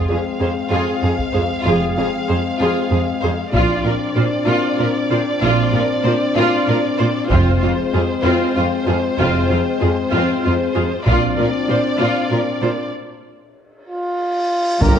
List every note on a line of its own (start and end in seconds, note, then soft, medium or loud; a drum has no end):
0.00 3.49 G#3 soft
0.00 3.49 C4 soft
0.00 3.49 F5 soft
0.08 0.17 F2 soft
0.08 0.16 G#4 soft
0.08 0.17 G#4 soft
0.39 0.48 F2 soft
0.39 0.47 G#4 soft
0.39 0.49 C5 soft
0.71 0.79 F2 soft
0.71 1.01 F4 soft
0.71 1.01 G#4 soft
1.02 1.11 F2 soft
1.02 1.10 G#4 soft
1.02 1.11 G#4 soft
1.19 taiko soft
1.33 1.42 F2 soft
1.33 1.42 G#4 soft
1.33 1.41 C5 soft
1.62 1.73 F2 soft
1.62 1.93 F4 soft
1.66 1.95 F1 soft
1.66 1.95 G#4 soft
1.97 2.05 F2 soft
1.97 2.05 G#4 soft
2.28 2.37 F2 soft
2.28 2.36 G#4 soft
2.28 2.36 C5 soft
2.60 2.68 F2 soft
2.60 2.89 F4 soft
2.60 2.89 G#4 soft
2.91 2.99 F2 soft
2.91 2.99 G#4 soft
2.91 3.00 G#4 soft
3.22 3.31 F2 soft
3.22 3.31 G#4 soft
3.22 3.30 C5 soft
3.53 3.83 A#1 soft
3.53 3.61 A#2 soft
3.53 7.30 C4 soft
3.53 7.26 D4 soft
3.53 3.83 F4 soft
3.53 7.26 D5 soft
3.53 taiko soft
3.84 3.92 A#2 soft
3.84 3.92 F4 soft
3.84 3.93 A#4 soft
4.16 4.24 A#2 soft
4.16 4.24 F4 soft
4.16 4.24 C5 soft
4.46 4.55 A#2 soft
4.46 4.76 F4 soft
4.46 4.77 F4 soft
4.78 4.87 A#2 soft
4.78 4.86 F4 soft
4.78 4.87 A#4 soft
5.10 5.19 A#2 soft
5.10 5.18 F4 soft
5.10 5.19 C5 soft
5.42 5.71 A#1 medium
5.42 5.50 A#2 medium
5.42 5.71 F4 soft
5.42 5.72 F4 medium
5.73 5.82 A#2 soft
5.73 5.81 F4 soft
5.73 5.83 A#4 soft
6.03 6.12 A#2 soft
6.03 6.14 F4 soft
6.03 6.11 C5 soft
6.36 6.44 A#2 medium
6.36 6.65 F4 medium
6.36 6.66 F4 medium
6.68 6.76 A#2 soft
6.68 6.76 F4 soft
6.68 6.76 A#4 soft
6.98 7.08 A#2 soft
6.98 7.07 F4 soft
6.98 7.06 C5 medium
7.30 7.60 F1 medium
7.30 7.39 F2 medium
7.30 10.91 G#3 soft
7.30 7.59 C4 soft
7.30 10.91 C4 soft
7.30 7.59 F4 medium
7.30 11.02 C5 medium
7.30 taiko medium
7.61 7.71 F2 soft
7.61 7.69 F4 soft
7.61 7.70 F4 soft
7.93 8.02 F2 soft
7.93 8.01 F4 soft
7.93 8.02 G#4 soft
8.24 8.32 F2 medium
8.24 8.53 C4 medium
8.24 8.53 F4 medium
8.55 8.65 F2 soft
8.55 8.63 F4 soft
8.55 8.64 F4 soft
8.86 8.95 F2 soft
8.86 8.94 F4 soft
8.86 8.96 G#4 soft
9.18 9.48 F1 medium
9.18 9.27 F2 medium
9.18 9.47 C4 medium
9.18 9.47 F4 medium
9.49 9.58 F2 soft
9.49 9.57 F4 soft
9.49 9.58 F4 soft
9.80 9.90 F2 soft
9.80 9.89 F4 soft
9.80 9.88 G#4 soft
10.11 10.21 F2 soft
10.11 10.42 C4 soft
10.11 10.41 F4 soft
10.44 10.54 F2 soft
10.44 10.52 F4 soft
10.74 10.84 F2 soft
10.74 10.82 F4 soft
10.74 10.83 G#4 soft
11.06 11.35 A#1 soft
11.06 11.14 A#2 soft
11.06 12.91 C4 soft
11.06 12.92 D4 soft
11.06 11.35 F4 soft
11.06 11.36 F4 soft
11.06 12.91 D5 soft
11.06 taiko soft
11.36 11.46 A#2 soft
11.36 11.45 F4 soft
11.36 11.44 A#4 soft
11.68 11.77 A#2 soft
11.68 11.76 F4 soft
11.68 11.77 C5 soft
11.97 12.08 A#2 soft
11.97 12.28 F4 soft
11.97 12.29 F4 soft
12.30 12.39 A#2 soft
12.30 12.38 F4 soft
12.30 12.38 A#4 soft
12.62 12.70 A#2 soft
12.62 12.70 F4 soft
12.62 12.70 C5 soft
12.93 cymbal swell soft
13.88 14.83 F4 soft
14.81 14.99 G1 medium
14.81 14.99 G1 soft
14.81 14.99 G2 medium
14.81 14.99 A#3 soft
14.81 14.99 D4 soft
14.81 14.99 G4 soft
14.81 14.99 A#4 medium
14.81 14.99 A#5 soft
14.81 taiko medium
14.81 impact medium